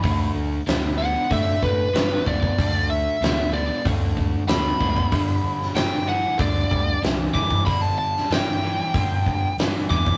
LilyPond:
<<
  \new Staff \with { instrumentName = "Lead electric guitar" } { \time 4/4 \key g \major \tempo 4 = 94 b''8 r4 fis''8 e''8 b'4 d''8~ | d''8 e''4 d''8 r4 b''4~ | b''4 g''8 fis''8 d''4 r8 d'''8 | b''16 a''16 a''8 g''2 r8 d'''8 | }
  \new Staff \with { instrumentName = "Overdriven electric guitar" } { \clef bass \time 4/4 \key g \major <d a>4 <d b>8 <d b>8 <d a>4 <d b>8 <d b>8 | <d a>4 <d b>8 <d b>8 <d a>4 <d b>8 <d b>8 | <g, d>4 <g, e>8 <g, e>8 <g, d>4 <g, e>8 <g, e>8 | <g, d>4 <g, e>8 <g, e>8 <g, d>4 <g, e>8 <g, e>8 | }
  \new Staff \with { instrumentName = "Picked electric bass" } { \clef bass \time 4/4 \key g \major d,8 d,8 d,4 a,8 a,8 g,8 d,8 | d,4 d,4 d,4 d,8 d,8 | g,,8 g,,8 g,,4 d,8 d,8 c,8 g,,8 | g,,4 g,,4 g,,4 g,,8 e,8 | }
  \new DrumStaff \with { instrumentName = "Drums" } \drummode { \time 4/4 <hho bd>4 <hho sn>4 <hho bd>8 bd8 <hho sn>8 bd16 bd16 | <hho bd>4 <hho sn>4 <hho bd>8 bd8 <hho sn>8 bd16 bd16 | <hho bd>8. sn16 <hho sn>4 <hho bd>8 bd8 <hho sn>8 bd16 bd16 | <hho bd>8. sn16 <hho sn>4 <hho bd>8 bd8 <hho sn>8 bd16 bd16 | }
>>